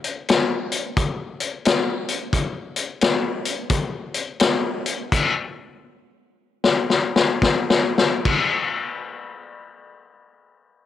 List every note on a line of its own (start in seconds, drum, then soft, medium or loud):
0.04 closed hi-hat medium
0.28 snare loud
0.28 closed hi-hat medium
0.72 closed hi-hat medium
0.97 kick loud
0.97 closed hi-hat medium
1.40 closed hi-hat medium
1.65 snare loud
1.65 closed hi-hat medium
2.08 closed hi-hat medium
2.33 kick loud
2.33 closed hi-hat medium
2.76 closed hi-hat medium
3.01 snare loud
3.01 closed hi-hat medium
3.45 closed hi-hat medium
3.70 kick loud
3.70 closed hi-hat medium
4.14 closed hi-hat medium
4.40 snare loud
4.40 closed hi-hat medium
4.86 closed hi-hat medium
5.12 kick loud
5.12 closed hi-hat medium
5.12 crash medium
6.64 snare medium
6.90 snare medium
7.16 snare medium
7.42 kick medium
7.42 snare medium
7.70 snare medium
7.98 snare medium
8.25 kick medium
8.25 crash medium